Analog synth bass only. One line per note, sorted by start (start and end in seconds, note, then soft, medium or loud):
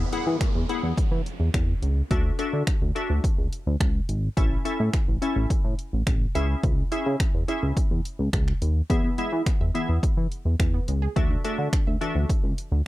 0.27 0.37 E3 medium
0.55 0.65 E2 medium
0.83 0.93 E2 medium
0.98 1.03 E3 soft
1.11 1.21 E3 medium
1.40 1.50 E2 medium
1.54 1.74 E2 loud
1.82 2.02 C#2 medium
2.11 2.31 D2 loud
2.53 2.63 D3 loud
2.81 2.91 D2 medium
3.10 3.20 D2 medium
3.38 3.48 C#2 medium
3.66 3.76 D2 loud
3.80 4.00 C#2 loud
4.09 4.29 G#1 medium
4.37 4.57 A1 loud
4.80 4.90 A2 loud
5.08 5.18 A1 loud
5.36 5.46 A1 medium
5.50 5.56 A2 soft
5.64 5.74 A2 loud
5.93 6.03 A1 medium
6.07 6.27 A1 loud
6.35 6.55 C#2 loud
6.63 6.83 C#2 loud
7.06 7.16 C#3 loud
7.34 7.44 E2 medium
7.63 7.73 C#2 medium
7.91 8.01 E2 medium
8.19 8.29 C#2 medium
8.33 8.53 C#2 medium
8.62 8.82 D#2 medium
8.90 9.10 E2 loud
9.32 9.42 E3 medium
9.61 9.71 E2 medium
9.89 9.99 E2 medium
10.03 10.09 E3 soft
10.17 10.27 E3 loud
10.45 10.55 E2 medium
10.60 10.80 E2 medium
10.88 11.08 C#2 medium
11.16 11.36 D2 loud
11.58 11.69 D3 loud
11.87 11.97 D2 medium
12.15 12.25 D2 medium
12.44 12.54 C#2 medium
12.72 12.82 D2 medium